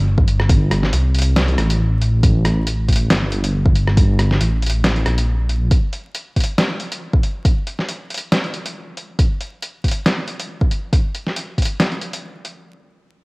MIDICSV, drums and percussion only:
0, 0, Header, 1, 2, 480
1, 0, Start_track
1, 0, Tempo, 434783
1, 544, Time_signature, 4, 2, 24, 8
1, 14617, End_track
2, 0, Start_track
2, 0, Title_t, "Drums"
2, 197, Note_on_c, 9, 36, 109
2, 305, Note_on_c, 9, 42, 54
2, 307, Note_off_c, 9, 36, 0
2, 416, Note_off_c, 9, 42, 0
2, 437, Note_on_c, 9, 37, 53
2, 544, Note_on_c, 9, 36, 124
2, 545, Note_on_c, 9, 42, 83
2, 548, Note_off_c, 9, 37, 0
2, 655, Note_off_c, 9, 36, 0
2, 656, Note_off_c, 9, 42, 0
2, 785, Note_on_c, 9, 37, 48
2, 785, Note_on_c, 9, 42, 53
2, 896, Note_off_c, 9, 37, 0
2, 896, Note_off_c, 9, 42, 0
2, 918, Note_on_c, 9, 38, 39
2, 1025, Note_on_c, 9, 42, 83
2, 1028, Note_off_c, 9, 38, 0
2, 1135, Note_off_c, 9, 42, 0
2, 1265, Note_on_c, 9, 42, 52
2, 1309, Note_off_c, 9, 42, 0
2, 1309, Note_on_c, 9, 42, 65
2, 1345, Note_off_c, 9, 42, 0
2, 1345, Note_on_c, 9, 42, 84
2, 1455, Note_off_c, 9, 42, 0
2, 1505, Note_on_c, 9, 38, 118
2, 1505, Note_on_c, 9, 42, 83
2, 1615, Note_off_c, 9, 38, 0
2, 1615, Note_off_c, 9, 42, 0
2, 1637, Note_on_c, 9, 42, 36
2, 1745, Note_off_c, 9, 42, 0
2, 1745, Note_on_c, 9, 37, 56
2, 1745, Note_on_c, 9, 42, 54
2, 1856, Note_off_c, 9, 37, 0
2, 1856, Note_off_c, 9, 42, 0
2, 1877, Note_on_c, 9, 42, 83
2, 1988, Note_off_c, 9, 42, 0
2, 2225, Note_on_c, 9, 42, 55
2, 2336, Note_off_c, 9, 42, 0
2, 2464, Note_on_c, 9, 36, 122
2, 2465, Note_on_c, 9, 42, 81
2, 2575, Note_off_c, 9, 36, 0
2, 2575, Note_off_c, 9, 42, 0
2, 2705, Note_on_c, 9, 37, 49
2, 2705, Note_on_c, 9, 42, 53
2, 2815, Note_off_c, 9, 37, 0
2, 2815, Note_off_c, 9, 42, 0
2, 2945, Note_on_c, 9, 42, 80
2, 3055, Note_off_c, 9, 42, 0
2, 3184, Note_on_c, 9, 36, 61
2, 3185, Note_on_c, 9, 42, 48
2, 3229, Note_off_c, 9, 42, 0
2, 3229, Note_on_c, 9, 42, 62
2, 3264, Note_off_c, 9, 42, 0
2, 3264, Note_on_c, 9, 42, 78
2, 3295, Note_off_c, 9, 36, 0
2, 3375, Note_off_c, 9, 42, 0
2, 3424, Note_on_c, 9, 38, 120
2, 3424, Note_on_c, 9, 42, 79
2, 3535, Note_off_c, 9, 38, 0
2, 3535, Note_off_c, 9, 42, 0
2, 3664, Note_on_c, 9, 42, 54
2, 3775, Note_off_c, 9, 42, 0
2, 3796, Note_on_c, 9, 42, 79
2, 3907, Note_off_c, 9, 42, 0
2, 4036, Note_on_c, 9, 36, 113
2, 4145, Note_on_c, 9, 42, 53
2, 4147, Note_off_c, 9, 36, 0
2, 4255, Note_off_c, 9, 42, 0
2, 4277, Note_on_c, 9, 37, 49
2, 4384, Note_on_c, 9, 36, 117
2, 4385, Note_on_c, 9, 42, 78
2, 4388, Note_off_c, 9, 37, 0
2, 4495, Note_off_c, 9, 36, 0
2, 4495, Note_off_c, 9, 42, 0
2, 4625, Note_on_c, 9, 37, 48
2, 4625, Note_on_c, 9, 42, 50
2, 4736, Note_off_c, 9, 37, 0
2, 4736, Note_off_c, 9, 42, 0
2, 4757, Note_on_c, 9, 38, 37
2, 4865, Note_on_c, 9, 42, 76
2, 4867, Note_off_c, 9, 38, 0
2, 4975, Note_off_c, 9, 42, 0
2, 5105, Note_on_c, 9, 42, 47
2, 5149, Note_off_c, 9, 42, 0
2, 5149, Note_on_c, 9, 42, 63
2, 5184, Note_off_c, 9, 42, 0
2, 5184, Note_on_c, 9, 42, 74
2, 5295, Note_off_c, 9, 42, 0
2, 5344, Note_on_c, 9, 38, 118
2, 5344, Note_on_c, 9, 42, 75
2, 5455, Note_off_c, 9, 38, 0
2, 5455, Note_off_c, 9, 42, 0
2, 5477, Note_on_c, 9, 42, 35
2, 5584, Note_off_c, 9, 42, 0
2, 5584, Note_on_c, 9, 37, 57
2, 5584, Note_on_c, 9, 42, 48
2, 5695, Note_off_c, 9, 37, 0
2, 5695, Note_off_c, 9, 42, 0
2, 5717, Note_on_c, 9, 42, 72
2, 5827, Note_off_c, 9, 42, 0
2, 6064, Note_on_c, 9, 42, 50
2, 6174, Note_off_c, 9, 42, 0
2, 6304, Note_on_c, 9, 42, 72
2, 6305, Note_on_c, 9, 36, 116
2, 6414, Note_off_c, 9, 42, 0
2, 6415, Note_off_c, 9, 36, 0
2, 6544, Note_on_c, 9, 42, 47
2, 6654, Note_off_c, 9, 42, 0
2, 6785, Note_on_c, 9, 42, 73
2, 6895, Note_off_c, 9, 42, 0
2, 7025, Note_on_c, 9, 36, 59
2, 7025, Note_on_c, 9, 42, 44
2, 7069, Note_off_c, 9, 42, 0
2, 7069, Note_on_c, 9, 42, 61
2, 7105, Note_off_c, 9, 42, 0
2, 7105, Note_on_c, 9, 42, 72
2, 7135, Note_off_c, 9, 36, 0
2, 7216, Note_off_c, 9, 42, 0
2, 7265, Note_on_c, 9, 38, 110
2, 7265, Note_on_c, 9, 42, 70
2, 7376, Note_off_c, 9, 38, 0
2, 7376, Note_off_c, 9, 42, 0
2, 7506, Note_on_c, 9, 42, 47
2, 7616, Note_off_c, 9, 42, 0
2, 7638, Note_on_c, 9, 42, 72
2, 7749, Note_off_c, 9, 42, 0
2, 7877, Note_on_c, 9, 36, 106
2, 7986, Note_on_c, 9, 42, 48
2, 7987, Note_off_c, 9, 36, 0
2, 8096, Note_off_c, 9, 42, 0
2, 8225, Note_on_c, 9, 36, 110
2, 8226, Note_on_c, 9, 42, 73
2, 8335, Note_off_c, 9, 36, 0
2, 8336, Note_off_c, 9, 42, 0
2, 8466, Note_on_c, 9, 42, 48
2, 8577, Note_off_c, 9, 42, 0
2, 8598, Note_on_c, 9, 38, 35
2, 8706, Note_on_c, 9, 42, 71
2, 8708, Note_off_c, 9, 38, 0
2, 8816, Note_off_c, 9, 42, 0
2, 8946, Note_on_c, 9, 42, 44
2, 8990, Note_off_c, 9, 42, 0
2, 8990, Note_on_c, 9, 42, 59
2, 9026, Note_off_c, 9, 42, 0
2, 9026, Note_on_c, 9, 42, 73
2, 9136, Note_off_c, 9, 42, 0
2, 9185, Note_on_c, 9, 38, 105
2, 9185, Note_on_c, 9, 42, 69
2, 9295, Note_off_c, 9, 38, 0
2, 9295, Note_off_c, 9, 42, 0
2, 9317, Note_on_c, 9, 42, 32
2, 9424, Note_off_c, 9, 42, 0
2, 9424, Note_on_c, 9, 42, 49
2, 9535, Note_off_c, 9, 42, 0
2, 9557, Note_on_c, 9, 42, 70
2, 9667, Note_off_c, 9, 42, 0
2, 9905, Note_on_c, 9, 42, 47
2, 10015, Note_off_c, 9, 42, 0
2, 10144, Note_on_c, 9, 36, 107
2, 10145, Note_on_c, 9, 42, 76
2, 10254, Note_off_c, 9, 36, 0
2, 10255, Note_off_c, 9, 42, 0
2, 10384, Note_on_c, 9, 42, 48
2, 10495, Note_off_c, 9, 42, 0
2, 10624, Note_on_c, 9, 42, 73
2, 10735, Note_off_c, 9, 42, 0
2, 10864, Note_on_c, 9, 36, 55
2, 10865, Note_on_c, 9, 42, 47
2, 10909, Note_off_c, 9, 42, 0
2, 10909, Note_on_c, 9, 42, 59
2, 10945, Note_off_c, 9, 42, 0
2, 10945, Note_on_c, 9, 42, 74
2, 10974, Note_off_c, 9, 36, 0
2, 11055, Note_off_c, 9, 42, 0
2, 11104, Note_on_c, 9, 38, 108
2, 11104, Note_on_c, 9, 42, 72
2, 11215, Note_off_c, 9, 38, 0
2, 11215, Note_off_c, 9, 42, 0
2, 11344, Note_on_c, 9, 42, 49
2, 11455, Note_off_c, 9, 42, 0
2, 11477, Note_on_c, 9, 42, 73
2, 11587, Note_off_c, 9, 42, 0
2, 11716, Note_on_c, 9, 36, 94
2, 11825, Note_on_c, 9, 42, 49
2, 11826, Note_off_c, 9, 36, 0
2, 11936, Note_off_c, 9, 42, 0
2, 12064, Note_on_c, 9, 36, 111
2, 12065, Note_on_c, 9, 42, 76
2, 12174, Note_off_c, 9, 36, 0
2, 12175, Note_off_c, 9, 42, 0
2, 12305, Note_on_c, 9, 42, 50
2, 12416, Note_off_c, 9, 42, 0
2, 12438, Note_on_c, 9, 38, 34
2, 12545, Note_on_c, 9, 42, 77
2, 12548, Note_off_c, 9, 38, 0
2, 12655, Note_off_c, 9, 42, 0
2, 12784, Note_on_c, 9, 36, 57
2, 12785, Note_on_c, 9, 42, 47
2, 12830, Note_off_c, 9, 42, 0
2, 12830, Note_on_c, 9, 42, 62
2, 12865, Note_off_c, 9, 42, 0
2, 12865, Note_on_c, 9, 42, 76
2, 12894, Note_off_c, 9, 36, 0
2, 12976, Note_off_c, 9, 42, 0
2, 13025, Note_on_c, 9, 38, 106
2, 13025, Note_on_c, 9, 42, 74
2, 13135, Note_off_c, 9, 38, 0
2, 13135, Note_off_c, 9, 42, 0
2, 13158, Note_on_c, 9, 42, 33
2, 13265, Note_off_c, 9, 42, 0
2, 13265, Note_on_c, 9, 42, 52
2, 13375, Note_off_c, 9, 42, 0
2, 13397, Note_on_c, 9, 42, 75
2, 13507, Note_off_c, 9, 42, 0
2, 13745, Note_on_c, 9, 42, 49
2, 13855, Note_off_c, 9, 42, 0
2, 14617, End_track
0, 0, End_of_file